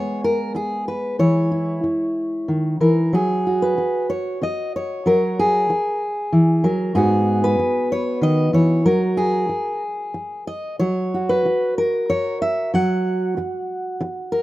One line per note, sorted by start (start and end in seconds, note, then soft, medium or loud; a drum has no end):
0.00 2.80 G#3 soft
0.00 1.20 B3 soft
0.00 0.56 G#4 soft
0.00 0.23 C#5 medium
0.24 0.55 A#4 medium
0.55 0.87 G#4 medium
0.55 muted steel-string acoustic guitar stroke medium
0.88 1.19 B4 medium
1.19 1.82 E3 medium
1.19 3.14 C#5 medium
1.51 2.81 E4 soft
1.84 muted steel-string acoustic guitar stroke medium
2.48 2.80 D#3 medium
2.80 3.13 E3 medium
2.80 3.13 A#4 medium
3.13 3.78 F#3 medium
3.13 4.09 G#4 medium
3.47 5.42 F#4 soft
3.62 4.11 B4 medium
3.78 muted steel-string acoustic guitar stroke medium
4.10 4.42 C#5 medium
4.42 4.75 D#5 medium
4.42 muted steel-string acoustic guitar stroke medium
4.76 5.39 C#5 medium
5.06 5.70 F#3 medium
5.06 6.01 A#4 medium
5.39 6.94 G#4 medium
5.70 muted steel-string acoustic guitar stroke medium
6.32 6.64 E3 medium
6.64 6.95 F#3 medium
6.64 6.95 A#4 medium
6.95 7.58 G#2 medium
6.95 8.81 B3 soft
6.95 9.20 F#4 medium
6.95 7.90 G#4 medium
7.44 8.54 B4 medium
7.59 muted steel-string acoustic guitar stroke medium
7.92 8.23 C#5 loud
8.21 8.53 D#3 medium
8.21 8.54 D#5 loud
8.53 8.85 E3 medium
8.53 8.85 C#5 medium
8.85 9.49 F#3 medium
8.85 9.82 A#4 medium
9.17 10.47 G#4 medium
9.49 muted steel-string acoustic guitar stroke medium
10.14 muted steel-string acoustic guitar stroke medium
10.47 10.79 D#5 medium
10.79 11.46 F#3 medium
10.79 11.93 C#5 medium
11.14 14.43 F#4 soft
11.29 11.77 B4 medium
11.45 muted steel-string acoustic guitar stroke medium
11.78 12.74 A#4 medium
12.10 12.41 C#5 loud
12.10 muted steel-string acoustic guitar stroke medium
12.42 12.73 E5 medium
12.74 13.38 F#3 medium
12.74 14.43 F#5 loud
13.37 muted steel-string acoustic guitar stroke medium
14.01 muted steel-string acoustic guitar stroke medium
14.32 14.43 A#4 medium